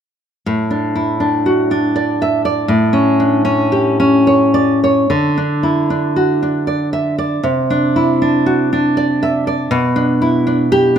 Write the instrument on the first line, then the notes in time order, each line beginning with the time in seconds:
nylon-string guitar
0.46 A2
0.71 D4
0.96 E4
1.20 D4
1.46 F#4
1.71 D4
1.96 D5
2.22 E5
2.45 D5
2.68 A2
2.93 C#4
3.20 D4
3.45 C#4
3.72 G4
4.00 C#4
4.27 C#5
4.54 D5
4.84 C#5
5.10 D3
5.38 D4
5.63 E4
5.90 D4
6.16 F#4
6.43 D4
6.67 D5
6.93 E5
7.18 D5
7.43 C3
7.70 D4
7.96 E4
8.22 D4
8.46 F#4
8.73 D4
8.97 D5
9.23 E5
9.47 D5
9.71 B2
9.96 D4
10.22 E4
10.47 D4
10.72 G4